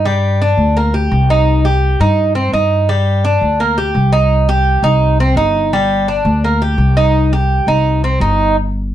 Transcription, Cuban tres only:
0, 0, Header, 1, 2, 480
1, 0, Start_track
1, 0, Tempo, 354400
1, 73, Time_signature, 4, 2, 24, 8
1, 12121, End_track
2, 0, Start_track
2, 0, Title_t, "Cuban tres"
2, 0, Program_c, 0, 25
2, 74, Note_on_c, 0, 55, 79
2, 539, Note_off_c, 0, 55, 0
2, 563, Note_on_c, 0, 62, 73
2, 1024, Note_off_c, 0, 62, 0
2, 1038, Note_on_c, 0, 58, 66
2, 1268, Note_off_c, 0, 58, 0
2, 1273, Note_on_c, 0, 67, 73
2, 1738, Note_off_c, 0, 67, 0
2, 1763, Note_on_c, 0, 63, 74
2, 2224, Note_off_c, 0, 63, 0
2, 2233, Note_on_c, 0, 67, 76
2, 2699, Note_off_c, 0, 67, 0
2, 2717, Note_on_c, 0, 63, 77
2, 3180, Note_off_c, 0, 63, 0
2, 3186, Note_on_c, 0, 60, 71
2, 3422, Note_off_c, 0, 60, 0
2, 3433, Note_on_c, 0, 63, 71
2, 3899, Note_off_c, 0, 63, 0
2, 3913, Note_on_c, 0, 55, 77
2, 4379, Note_off_c, 0, 55, 0
2, 4397, Note_on_c, 0, 62, 77
2, 4861, Note_off_c, 0, 62, 0
2, 4877, Note_on_c, 0, 58, 72
2, 5108, Note_off_c, 0, 58, 0
2, 5115, Note_on_c, 0, 67, 72
2, 5581, Note_off_c, 0, 67, 0
2, 5587, Note_on_c, 0, 63, 81
2, 6056, Note_off_c, 0, 63, 0
2, 6078, Note_on_c, 0, 67, 80
2, 6542, Note_off_c, 0, 67, 0
2, 6551, Note_on_c, 0, 63, 84
2, 7018, Note_off_c, 0, 63, 0
2, 7046, Note_on_c, 0, 60, 74
2, 7267, Note_off_c, 0, 60, 0
2, 7273, Note_on_c, 0, 63, 79
2, 7739, Note_off_c, 0, 63, 0
2, 7763, Note_on_c, 0, 55, 82
2, 8225, Note_off_c, 0, 55, 0
2, 8239, Note_on_c, 0, 62, 71
2, 8703, Note_off_c, 0, 62, 0
2, 8727, Note_on_c, 0, 58, 68
2, 8954, Note_off_c, 0, 58, 0
2, 8963, Note_on_c, 0, 67, 75
2, 9425, Note_off_c, 0, 67, 0
2, 9437, Note_on_c, 0, 63, 82
2, 9902, Note_off_c, 0, 63, 0
2, 9925, Note_on_c, 0, 67, 72
2, 10386, Note_off_c, 0, 67, 0
2, 10400, Note_on_c, 0, 63, 77
2, 10864, Note_off_c, 0, 63, 0
2, 10888, Note_on_c, 0, 60, 69
2, 11115, Note_off_c, 0, 60, 0
2, 11124, Note_on_c, 0, 63, 74
2, 11585, Note_off_c, 0, 63, 0
2, 12121, End_track
0, 0, End_of_file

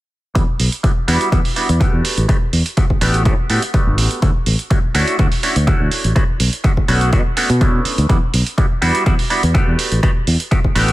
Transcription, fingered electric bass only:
0, 0, Header, 1, 3, 480
1, 0, Start_track
1, 0, Tempo, 483871
1, 352, Time_signature, 4, 2, 24, 8
1, 10837, End_track
2, 0, Start_track
2, 0, Title_t, "Fingered electric bass"
2, 0, Program_c, 0, 33
2, 353, Note_on_c, 0, 40, 93
2, 433, Note_off_c, 0, 40, 0
2, 591, Note_on_c, 0, 35, 76
2, 672, Note_off_c, 0, 35, 0
2, 1073, Note_on_c, 0, 40, 80
2, 1153, Note_off_c, 0, 40, 0
2, 1313, Note_on_c, 0, 40, 76
2, 1393, Note_off_c, 0, 40, 0
2, 1679, Note_on_c, 0, 40, 83
2, 1827, Note_off_c, 0, 40, 0
2, 1918, Note_on_c, 0, 40, 84
2, 1990, Note_off_c, 0, 40, 0
2, 2158, Note_on_c, 0, 33, 78
2, 2230, Note_off_c, 0, 33, 0
2, 2510, Note_on_c, 0, 40, 79
2, 2592, Note_off_c, 0, 40, 0
2, 2990, Note_on_c, 0, 33, 83
2, 3232, Note_on_c, 0, 45, 87
2, 3246, Note_off_c, 0, 33, 0
2, 3312, Note_off_c, 0, 45, 0
2, 3470, Note_on_c, 0, 45, 80
2, 3552, Note_off_c, 0, 45, 0
2, 3838, Note_on_c, 0, 31, 91
2, 3952, Note_off_c, 0, 31, 0
2, 3952, Note_on_c, 0, 33, 89
2, 4032, Note_off_c, 0, 33, 0
2, 4191, Note_on_c, 0, 38, 94
2, 4272, Note_off_c, 0, 38, 0
2, 4430, Note_on_c, 0, 33, 85
2, 4512, Note_off_c, 0, 33, 0
2, 4908, Note_on_c, 0, 38, 81
2, 4990, Note_off_c, 0, 38, 0
2, 5151, Note_on_c, 0, 38, 80
2, 5232, Note_off_c, 0, 38, 0
2, 5516, Note_on_c, 0, 38, 82
2, 5665, Note_off_c, 0, 38, 0
2, 5757, Note_on_c, 0, 38, 86
2, 5830, Note_off_c, 0, 38, 0
2, 5997, Note_on_c, 0, 33, 81
2, 6070, Note_off_c, 0, 33, 0
2, 6350, Note_on_c, 0, 35, 83
2, 6432, Note_off_c, 0, 35, 0
2, 6829, Note_on_c, 0, 35, 81
2, 7072, Note_on_c, 0, 47, 86
2, 7087, Note_off_c, 0, 35, 0
2, 7153, Note_off_c, 0, 47, 0
2, 7437, Note_on_c, 0, 47, 86
2, 7725, Note_off_c, 0, 47, 0
2, 7917, Note_on_c, 0, 38, 89
2, 7990, Note_off_c, 0, 38, 0
2, 8031, Note_on_c, 0, 40, 94
2, 8112, Note_off_c, 0, 40, 0
2, 8271, Note_on_c, 0, 35, 81
2, 8352, Note_off_c, 0, 35, 0
2, 8752, Note_on_c, 0, 40, 85
2, 8833, Note_off_c, 0, 40, 0
2, 8992, Note_on_c, 0, 40, 77
2, 9073, Note_off_c, 0, 40, 0
2, 9359, Note_on_c, 0, 40, 85
2, 9507, Note_off_c, 0, 40, 0
2, 9598, Note_on_c, 0, 40, 88
2, 9670, Note_off_c, 0, 40, 0
2, 9840, Note_on_c, 0, 33, 80
2, 9911, Note_off_c, 0, 33, 0
2, 10193, Note_on_c, 0, 40, 83
2, 10273, Note_off_c, 0, 40, 0
2, 10670, Note_on_c, 0, 33, 85
2, 10837, Note_off_c, 0, 33, 0
2, 10837, End_track
3, 0, Start_track
3, 0, Title_t, "Muted fingered electric bass strokes"
3, 7789, Note_on_c, 9, 29, 40
3, 7888, Note_off_c, 9, 29, 0
3, 10837, End_track
0, 0, End_of_file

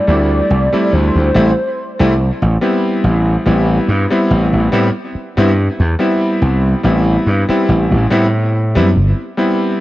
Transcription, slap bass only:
0, 0, Header, 1, 3, 480
1, 0, Start_track
1, 0, Key_signature, 0, "minor"
1, 0, Tempo, 845070
1, 47, Time_signature, 4, 2, 24, 8
1, 5569, End_track
2, 0, Start_track
2, 0, Title_t, "Slap bass"
2, 0, Program_c, 0, 36
2, 46, Note_on_c, 0, 38, 98
2, 225, Note_off_c, 0, 38, 0
2, 286, Note_on_c, 0, 36, 94
2, 380, Note_off_c, 0, 36, 0
2, 527, Note_on_c, 0, 38, 89
2, 620, Note_off_c, 0, 38, 0
2, 655, Note_on_c, 0, 38, 93
2, 736, Note_off_c, 0, 38, 0
2, 766, Note_on_c, 0, 33, 85
2, 860, Note_off_c, 0, 33, 0
2, 1134, Note_on_c, 0, 36, 84
2, 1304, Note_off_c, 0, 36, 0
2, 1374, Note_on_c, 0, 33, 97
2, 1455, Note_off_c, 0, 33, 0
2, 1725, Note_on_c, 0, 33, 86
2, 1904, Note_off_c, 0, 33, 0
2, 1965, Note_on_c, 0, 33, 96
2, 2145, Note_off_c, 0, 33, 0
2, 2205, Note_on_c, 0, 43, 96
2, 2299, Note_off_c, 0, 43, 0
2, 2446, Note_on_c, 0, 33, 88
2, 2539, Note_off_c, 0, 33, 0
2, 2573, Note_on_c, 0, 33, 99
2, 2655, Note_off_c, 0, 33, 0
2, 2685, Note_on_c, 0, 45, 88
2, 2779, Note_off_c, 0, 45, 0
2, 3054, Note_on_c, 0, 43, 85
2, 3224, Note_off_c, 0, 43, 0
2, 3293, Note_on_c, 0, 40, 102
2, 3375, Note_off_c, 0, 40, 0
2, 3645, Note_on_c, 0, 36, 90
2, 3824, Note_off_c, 0, 36, 0
2, 3885, Note_on_c, 0, 33, 98
2, 4064, Note_off_c, 0, 33, 0
2, 4126, Note_on_c, 0, 43, 95
2, 4219, Note_off_c, 0, 43, 0
2, 4366, Note_on_c, 0, 33, 87
2, 4460, Note_off_c, 0, 33, 0
2, 4494, Note_on_c, 0, 33, 93
2, 4576, Note_off_c, 0, 33, 0
2, 4606, Note_on_c, 0, 45, 88
2, 4975, Note_on_c, 0, 42, 77
2, 4984, Note_off_c, 0, 45, 0
2, 5087, Note_on_c, 0, 31, 80
2, 5096, Note_off_c, 0, 42, 0
2, 5180, Note_off_c, 0, 31, 0
2, 5569, End_track
3, 0, Start_track
3, 0, Title_t, "Muted slap bass strokes"
3, 415, Note_on_c, 9, 29, 43
3, 471, Note_off_c, 9, 29, 0
3, 2925, Note_on_c, 9, 29, 42
3, 2982, Note_off_c, 9, 29, 0
3, 4254, Note_on_c, 9, 29, 43
3, 4311, Note_off_c, 9, 29, 0
3, 5569, End_track
0, 0, End_of_file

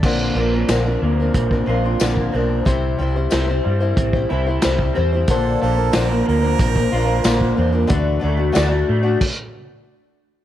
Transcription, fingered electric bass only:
0, 0, Header, 1, 2, 480
1, 0, Start_track
1, 0, Tempo, 654308
1, 28, Time_signature, 4, 2, 24, 8
1, 7664, End_track
2, 0, Start_track
2, 0, Title_t, "Fingered electric bass"
2, 0, Program_c, 0, 33
2, 24, Note_on_c, 0, 34, 87
2, 221, Note_off_c, 0, 34, 0
2, 255, Note_on_c, 0, 34, 97
2, 456, Note_off_c, 0, 34, 0
2, 505, Note_on_c, 0, 34, 95
2, 702, Note_off_c, 0, 34, 0
2, 747, Note_on_c, 0, 38, 92
2, 944, Note_off_c, 0, 38, 0
2, 990, Note_on_c, 0, 34, 78
2, 1187, Note_off_c, 0, 34, 0
2, 1228, Note_on_c, 0, 34, 88
2, 1426, Note_off_c, 0, 34, 0
2, 1472, Note_on_c, 0, 34, 70
2, 1669, Note_off_c, 0, 34, 0
2, 1718, Note_on_c, 0, 35, 84
2, 1912, Note_off_c, 0, 35, 0
2, 1956, Note_on_c, 0, 36, 91
2, 2151, Note_off_c, 0, 36, 0
2, 2196, Note_on_c, 0, 36, 96
2, 2392, Note_off_c, 0, 36, 0
2, 2441, Note_on_c, 0, 36, 94
2, 2635, Note_off_c, 0, 36, 0
2, 2684, Note_on_c, 0, 43, 88
2, 2877, Note_off_c, 0, 43, 0
2, 2917, Note_on_c, 0, 33, 83
2, 3113, Note_off_c, 0, 33, 0
2, 3161, Note_on_c, 0, 36, 78
2, 3356, Note_off_c, 0, 36, 0
2, 3409, Note_on_c, 0, 36, 77
2, 3600, Note_off_c, 0, 36, 0
2, 3649, Note_on_c, 0, 40, 87
2, 3840, Note_off_c, 0, 40, 0
2, 3876, Note_on_c, 0, 34, 98
2, 4073, Note_off_c, 0, 34, 0
2, 4128, Note_on_c, 0, 34, 97
2, 4320, Note_off_c, 0, 34, 0
2, 4367, Note_on_c, 0, 34, 93
2, 4559, Note_off_c, 0, 34, 0
2, 4609, Note_on_c, 0, 38, 90
2, 4801, Note_off_c, 0, 38, 0
2, 4837, Note_on_c, 0, 34, 88
2, 5033, Note_off_c, 0, 34, 0
2, 5082, Note_on_c, 0, 34, 96
2, 5276, Note_off_c, 0, 34, 0
2, 5317, Note_on_c, 0, 34, 83
2, 5513, Note_off_c, 0, 34, 0
2, 5562, Note_on_c, 0, 40, 94
2, 5755, Note_off_c, 0, 40, 0
2, 5797, Note_on_c, 0, 38, 100
2, 5992, Note_off_c, 0, 38, 0
2, 6040, Note_on_c, 0, 38, 102
2, 6233, Note_off_c, 0, 38, 0
2, 6280, Note_on_c, 0, 38, 98
2, 6473, Note_off_c, 0, 38, 0
2, 6522, Note_on_c, 0, 45, 87
2, 6713, Note_off_c, 0, 45, 0
2, 7664, End_track
0, 0, End_of_file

